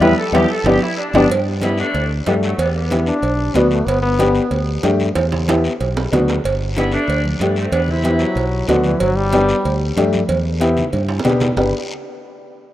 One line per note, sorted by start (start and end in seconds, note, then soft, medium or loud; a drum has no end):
0.00 0.13 E2 medium
0.00 0.12 G3 loud
0.00 0.12 B3 loud
0.00 0.12 E4 loud
0.00 0.17 B4 medium
0.00 high conga medium
0.00 high timbale loud
0.00 long guiro loud
0.18 0.34 A4 medium
0.32 0.45 E2 loud
0.32 0.44 G3 loud
0.32 0.44 B3 loud
0.32 0.44 E4 medium
0.32 0.49 G4 medium
0.32 high conga loud
0.32 high timbale loud
0.32 long guiro loud
0.51 0.66 A4 medium
0.64 0.77 G1 loud
0.64 0.76 B3 loud
0.64 0.77 D4 medium
0.64 0.77 G4 medium
0.64 0.82 G4 medium
0.64 high conga loud
0.64 high timbale loud
0.64 long guiro loud
0.82 0.98 E4 medium
0.98 1.14 D4 medium
1.13 1.26 G1 loud
1.13 1.25 B3 loud
1.13 1.25 D4 loud
1.13 1.30 D4 loud
1.13 1.25 G4 loud
1.13 high conga loud
1.13 high timbale loud
1.13 long guiro loud
1.29 1.81 G2 medium
1.29 cowbell loud
1.29 long guiro medium
1.61 1.85 B3 medium
1.61 1.78 B3 medium
1.61 1.85 D4 medium
1.61 1.77 E4 loud
1.61 1.85 G4 medium
1.61 cowbell medium
1.61 high conga medium
1.61 short guiro medium
1.78 2.09 A3 medium
1.78 2.09 D4 loud
1.78 short guiro medium
1.94 2.20 D2 medium
1.94 cowbell medium
1.94 high conga soft
1.94 long guiro medium
2.26 2.52 G2 medium
2.26 2.34 G3 medium
2.26 2.49 A3 medium
2.26 2.34 B3 medium
2.26 2.50 D4 medium
2.26 2.50 G4 medium
2.26 cowbell medium
2.26 high conga medium
2.26 low timbale medium
2.26 short guiro medium
2.43 2.59 F#3 medium
2.43 2.58 A3 medium
2.43 short guiro medium
2.58 3.10 E2 medium
2.58 2.74 G3 medium
2.58 2.74 B3 medium
2.58 cowbell loud
2.58 high conga soft
2.58 long guiro medium
2.75 3.20 G3 medium
2.75 3.35 B3 medium
2.90 3.14 B3 medium
2.90 3.14 E4 medium
2.90 3.14 G4 medium
2.90 cowbell medium
2.90 high conga medium
2.90 short guiro medium
3.06 3.57 D4 loud
3.06 short guiro medium
3.22 3.48 B1 medium
3.22 cowbell medium
3.22 high conga soft
3.22 long guiro medium
3.54 3.81 D2 loud
3.54 3.71 B3 medium
3.54 3.78 B3 medium
3.54 3.78 D4 medium
3.54 3.78 F#4 loud
3.54 cowbell medium
3.54 high conga medium
3.54 low conga medium
3.54 short guiro medium
3.71 3.88 A3 medium
3.71 short guiro medium
3.87 4.38 G1 loud
3.87 4.02 B3 medium
3.87 cowbell loud
3.87 long guiro medium
4.02 4.63 B3 loud
4.19 4.42 B3 medium
4.19 4.42 D4 medium
4.19 4.42 G4 medium
4.19 cowbell medium
4.19 high conga medium
4.19 short guiro medium
4.35 short guiro medium
4.51 4.77 D2 medium
4.51 cowbell medium
4.51 long guiro medium
4.83 5.09 G2 medium
4.83 5.06 A3 medium
4.83 5.06 D4 medium
4.83 5.06 G4 medium
4.83 cowbell medium
4.83 high conga medium
4.83 low timbale medium
4.83 short guiro medium
5.00 high conga medium
5.00 short guiro medium
5.15 5.67 E2 loud
5.15 cowbell loud
5.15 high timbale medium
5.15 long guiro medium
5.32 low conga medium
5.32 high timbale medium
5.48 5.71 B3 medium
5.48 5.71 E4 medium
5.48 5.71 G4 medium
5.48 cowbell medium
5.48 high conga loud
5.48 high timbale medium
5.48 short guiro medium
5.64 short guiro medium
5.80 6.06 B1 medium
5.80 cowbell medium
5.80 long guiro medium
5.97 low timbale medium
6.12 6.38 D2 medium
6.12 6.35 B3 medium
6.12 6.35 D4 medium
6.12 6.35 F#4 medium
6.12 cowbell medium
6.12 high conga medium
6.12 low conga medium
6.12 low timbale medium
6.12 short guiro medium
6.28 low timbale medium
6.28 short guiro medium
6.44 6.96 G1 medium
6.44 cowbell loud
6.44 high conga soft
6.44 long guiro medium
6.75 6.91 B3 medium
6.75 6.99 B3 medium
6.75 6.99 D4 medium
6.75 6.92 E4 loud
6.75 6.99 G4 medium
6.75 cowbell medium
6.75 high conga medium
6.75 short guiro medium
6.92 7.22 A3 medium
6.92 7.23 D4 loud
6.92 short guiro medium
7.08 7.34 D2 medium
7.08 cowbell medium
7.08 high conga soft
7.08 long guiro medium
7.25 high conga medium
7.39 7.66 G2 medium
7.39 7.56 G3 medium
7.39 7.63 A3 medium
7.39 7.56 B3 medium
7.39 7.63 D4 medium
7.39 7.64 G4 medium
7.39 cowbell medium
7.39 high conga medium
7.39 short guiro medium
7.56 7.72 A3 medium
7.56 7.72 C4 medium
7.56 short guiro medium
7.72 8.23 E2 medium
7.72 7.88 B3 medium
7.72 7.88 D4 loud
7.72 cowbell loud
7.72 high conga soft
7.72 long guiro medium
7.88 8.37 C4 medium
7.88 8.53 E4 medium
7.88 low conga medium
8.03 8.27 B3 medium
8.03 8.27 E4 medium
8.03 8.27 G4 medium
8.03 cowbell medium
8.03 high conga medium
8.03 short guiro medium
8.19 8.64 F#3 medium
8.19 short guiro medium
8.35 8.62 B1 loud
8.35 cowbell medium
8.35 high conga soft
8.35 long guiro medium
8.67 8.94 D2 medium
8.67 8.84 D3 medium
8.67 8.91 B3 medium
8.67 8.91 D4 medium
8.67 8.91 F#4 loud
8.67 cowbell medium
8.67 high conga medium
8.67 low conga medium
8.67 short guiro medium
8.84 9.01 E3 medium
8.84 high conga medium
8.84 short guiro medium
9.00 9.52 G1 medium
9.00 9.18 F#3 loud
9.00 cowbell loud
9.00 high conga soft
9.00 long guiro medium
9.17 9.81 G3 loud
9.32 9.55 B3 medium
9.32 9.55 D4 medium
9.32 9.55 G4 medium
9.32 cowbell medium
9.32 high conga loud
9.32 short guiro medium
9.49 short guiro medium
9.65 9.91 D2 loud
9.65 cowbell medium
9.65 long guiro medium
9.96 10.22 G2 medium
9.96 10.19 A3 medium
9.96 10.20 D4 medium
9.96 10.20 G4 medium
9.96 cowbell medium
9.96 high conga medium
9.96 short guiro medium
10.13 high conga medium
10.13 short guiro medium
10.28 10.80 E2 loud
10.28 cowbell loud
10.28 high conga medium
10.28 long guiro medium
10.60 10.83 B3 medium
10.60 10.83 E4 medium
10.60 10.83 G4 medium
10.60 cowbell medium
10.60 short guiro medium
10.77 low conga medium
10.77 short guiro medium
10.93 11.19 G2 medium
10.93 cowbell medium
10.93 low conga medium
10.93 long guiro medium
11.09 high timbale medium
11.19 low timbale medium
11.24 11.51 B2 medium
11.24 11.47 B3 medium
11.24 11.47 D4 medium
11.24 11.47 G4 medium
11.24 cowbell medium
11.24 low conga loud
11.24 short guiro medium
11.29 low timbale medium
11.40 low conga medium
11.40 low timbale medium
11.40 short guiro medium
11.57 11.72 G1 medium
11.57 11.72 B3 medium
11.57 11.73 B3 medium
11.57 11.72 D4 medium
11.57 11.72 G4 medium
11.57 low conga medium
11.57 low timbale loud
11.57 long guiro medium